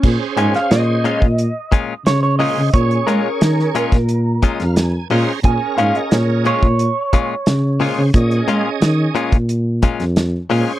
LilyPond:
<<
  \new Staff \with { instrumentName = "Clean electric guitar" } { \time 4/4 \key bes \minor \tempo 4 = 89 r8 aes''16 f''16 ees''2 des''16 des''16 ees''8 | des''8 bes'2. r8 | aes''8 f''16 ees''16 des''8 des''2~ des''8~ | des''8 r2. r8 | }
  \new Staff \with { instrumentName = "Tonewheel organ" } { \time 4/4 \key bes \minor <des' aes' c''>4.~ <des' aes' c''>16 r4. r16 <des' aes' c''>8 | <des' aes' des''>4.~ <des' aes' des''>16 r8. ees''16 f''16 aes''8 <des' aes' c'' bes''>8 | <des' aes' bes'>4.~ <des' aes' bes'>16 r4. r16 <des' aes' c''>8 | <des' aes' ees''>4.~ <des' aes' ees''>16 r4. r16 <des' aes' c''>8 | }
  \new Staff \with { instrumentName = "Clean electric guitar" } { \time 4/4 \key bes \minor r8 <bes, aes des' f'>8 r8 <bes, aes des' f'>8 r8 <bes, aes des' f'>8 r8 <bes, aes des' f'>8 | r8 <bes, aes des' f'>8 r8 <bes, aes des' f'>8 r8 <bes, aes des' f'>8 r8 <bes, aes des' f'>8 | r8 <bes, aes des' f'>8 r8 <bes, aes des' f'>8 r8 <bes, aes des' f'>8 r8 <bes, aes des' f'>8 | r8 <bes, aes des' f'>8 r8 <bes, aes des' f'>8 r8 <bes, aes des' f'>8 r8 <bes, aes des' f'>8 | }
  \new Staff \with { instrumentName = "Tuba" } { \clef bass \time 4/4 \key bes \minor bes,16 r16 aes,16 r16 bes,8. bes,8 r8. des8. des16 | bes,8 aes16 r16 ees8 bes,16 bes,4 f,8. bes,16 r16 | bes,16 r16 aes,16 r16 bes,8. bes,8 r8. des8. des16 | bes,8 aes16 r16 ees8 bes,16 bes,4 f,8. bes,16 r16 | }
  \new DrumStaff \with { instrumentName = "Drums" } \drummode { \time 4/4 <cymc bd>8 hh16 <hh sn>16 <hh sn>8 hh16 bd16 hh8 <hh bd>8 <hh sn>8 hho8 | <hh bd>16 hh16 hh8 <hh sn>16 sn16 hh16 <hh bd sn>16 hh8 <hh bd>16 <hh sn>16 <hh sn>8 hho8 | <hh bd>8 hh16 hh16 <hh sn>8 hh16 bd16 hh8 <hh bd>8 <hh sn>8 hho8 | <hh bd>16 hh16 hh8 <hh sn>8 hh16 <hh bd>16 hh8 <hh bd>16 <hh sn>16 <hh sn>8 hho8 | }
>>